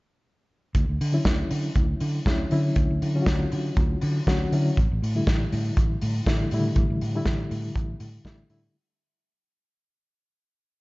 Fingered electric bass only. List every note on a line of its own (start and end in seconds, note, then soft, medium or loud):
0.75 0.85 D2 loud
0.89 0.97 D2 medium
1.01 1.18 D3 medium
1.25 1.43 D2 loud
1.51 1.69 D3 medium
1.76 1.93 D2 medium
2.01 2.19 D3 loud
2.26 2.44 D2 loud
2.52 2.69 D3 medium
2.76 2.86 D2 loud
2.91 2.99 D2 medium
3.02 3.19 D3 medium
3.27 3.44 D2 medium
3.53 3.70 D3 medium
3.77 3.94 D2 loud
4.03 4.20 D3 loud
4.27 4.45 D2 loud
4.52 4.70 D3 medium
4.78 4.87 A1 loud
4.92 4.99 A1 medium
5.02 5.20 A2 medium
5.27 5.45 A1 loud
5.53 5.70 A2 loud
5.77 5.95 A1 medium
6.02 6.19 A2 loud
6.27 6.44 A1 medium
6.52 6.69 A2 medium
6.76 6.85 A1 loud
6.90 6.98 A1 medium
7.02 7.19 A2 medium
7.26 7.43 A1 medium
7.51 7.68 A2 loud
7.76 7.93 A1 medium
8.00 8.18 A2 loud
8.25 8.42 A1 loud
8.49 8.67 A2 loud